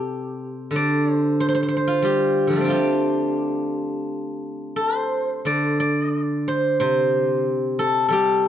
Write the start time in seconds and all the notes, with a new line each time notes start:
Already playing: C3 G4 A4 C5
0.71 D3
0.76 D5
1.14 C5
1.40 C5
1.49 C5
1.55 C5
1.63 C5
1.68 C5
1.77 C5
1.87 F4
2.02 G3 G4
2.47 D3 F3
2.53 G3 A3
2.61 C4 D4
2.68 F4 G4
4.76 A4
4.97 C5
5.45 D3 D5
5.80 D5
6.48 C5
6.80 C3 C5
7.79 A4
8.08 G3 A4
8.13 G4